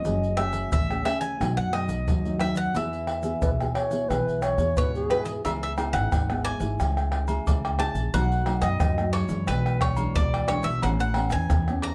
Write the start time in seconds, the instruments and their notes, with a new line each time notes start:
Already playing: mandolin D#5
0.05 upright bass F#1, nylon-string guitar F#3 A3 C#4 G#4, pandeiro, shaker, surdo
0.23 pandeiro, shaker
0.37 nylon-string guitar A3 C#4 G#4, mandolin E5, pandeiro, tamborim
0.53 pandeiro, shaker
0.72 upright bass A1, nylon-string guitar C#3, mandolin E5, pandeiro, shaker, surdo
0.89 nylon-string guitar A3 C#4 G#4, pandeiro, tamborim, shaker
1.05 nylon-string guitar A3 C#4 G#4, mandolin E5, pandeiro, tamborim
1.21 mandolin G#5, pandeiro, shaker
1.40 upright bass B1, nylon-string guitar B2 F#3 A3 D#4, pandeiro, tamborim, shaker, surdo
1.57 upright bass F#2, mandolin F#5, pandeiro, shaker
1.72 nylon-string guitar F#3 A3 D#4, mandolin D#5, pandeiro, tamborim
1.89 upright bass B1, pandeiro, shaker
2.08 upright bass D#2, nylon-string guitar F#2, pandeiro, shaker, surdo
2.25 nylon-string guitar F#3 A3 D#4, pandeiro, shaker
2.40 nylon-string guitar F#3 A3 D#4, mandolin E5, pandeiro, tamborim
2.55 mandolin F#5, pandeiro, shaker
2.75 upright bass E2, nylon-string guitar E3 B3 E4 G#4, mandolin E5, pandeiro, shaker, surdo
2.93 pandeiro, shaker
3.07 pandeiro, tamborim
3.23 nylon-string guitar B3 E4 G#4, pandeiro, shaker
3.42 upright bass B1, nylon-string guitar B2, flute B4, pandeiro, shaker, surdo
3.61 nylon-string guitar B3 E4 G#4, pandeiro, tamborim, shaker
3.74 flute C#5, pandeiro, tamborim
3.91 nylon-string guitar B3 E4 G#4, pandeiro, shaker
4.09 upright bass B1, nylon-string guitar E3 B3 E4 G#4, flute B4, pandeiro, tamborim, shaker, surdo
4.28 upright bass B1, pandeiro, shaker
4.42 flute C#5, pandeiro, tamborim, shaker
4.58 upright bass E2, nylon-string guitar B3 E4 G#4, pandeiro, shaker
4.77 upright bass G#2, nylon-string guitar B2, flute B4, mandolin C#5, pandeiro, shaker, surdo
4.95 flute G#4, pandeiro, shaker
5.10 nylon-string guitar B3 E4 G#4, mandolin B4, pandeiro, tamborim
5.25 mandolin D#5, pandeiro, shaker
5.45 upright bass C#2, nylon-string guitar C#3 B3 E4 G#4, mandolin E5, pandeiro, low agogo, shaker, surdo
5.63 mandolin E5, pandeiro, shaker
5.77 nylon-string guitar B3 E4 G#4, pandeiro, tamborim, low agogo, shaker
5.93 upright bass G#1, mandolin F#5, pandeiro, tamborim, shaker
6.12 upright bass G#1, nylon-string guitar G#2, pandeiro, tamborim, shaker, surdo
6.30 nylon-string guitar B3 E4 G#4, pandeiro, tamborim, shaker
6.45 mandolin G#5, pandeiro, high agogo
6.60 upright bass G#1, nylon-string guitar A3 E4 G#4, pandeiro, shaker
6.80 upright bass C#2, nylon-string guitar C#3, pandeiro, tamborim, shaker, surdo
6.97 pandeiro, tamborim, shaker
7.12 pandeiro, tamborim
7.28 nylon-string guitar A3 E4 G#4, pandeiro, low agogo, shaker
7.47 upright bass C#2, nylon-string guitar C#3, pandeiro, high agogo, shaker, surdo
7.65 pandeiro, tamborim, high agogo, shaker
7.79 nylon-string guitar A3 E4 G#4, mandolin A5, pandeiro, tamborim, high agogo
7.95 upright bass A#1, pandeiro, shaker
8.14 upright bass B1, nylon-string guitar B2 F#3 A3 D#4, mandolin F#5, pandeiro, low agogo, shaker, surdo
8.32 pandeiro, shaker
8.46 nylon-string guitar F#3 A3 D#4, pandeiro, tamborim, low agogo
8.62 upright bass F#2, mandolin D#5, pandeiro, tamborim, shaker
8.80 nylon-string guitar F#2, upright bass F#2, pandeiro, tamborim, shaker, surdo
8.98 nylon-string guitar F#3 A3 D#4, pandeiro, tamborim, shaker
9.13 mandolin C#5, pandeiro, high agogo
9.29 upright bass F#2, nylon-string guitar E3 G#3 D4, pandeiro, shaker
9.47 upright bass B1, nylon-string guitar B2, mandolin B4, pandeiro, tamborim, shaker, surdo
9.66 pandeiro, tamborim, shaker
9.81 mandolin C#5, pandeiro, tamborim, surdo
9.97 nylon-string guitar E3 G#3 D4, pandeiro, low agogo, shaker
10.16 upright bass B1, nylon-string guitar B2, mandolin D5, pandeiro, high agogo, shaker, surdo
10.34 pandeiro, tamborim, high agogo, shaker
10.48 nylon-string guitar E3 G#3 D4, mandolin C#5, pandeiro, tamborim, high agogo, shaker
10.63 upright bass B1, mandolin E5, pandeiro, shaker
10.82 upright bass A1, nylon-string guitar A2 E3 B3 C#4, mandolin F#5, pandeiro, low agogo, shaker, surdo
10.99 mandolin F#5, pandeiro, shaker
11.14 nylon-string guitar E3 B3 C#4, pandeiro, tamborim, low agogo
11.30 upright bass E2, mandolin G#5, pandeiro, tamborim, shaker
11.50 upright bass E2, nylon-string guitar E3, pandeiro, tamborim, shaker, surdo
11.68 nylon-string guitar E3 B3 C#4, pandeiro, tamborim, shaker
11.82 mandolin A#5, pandeiro, high agogo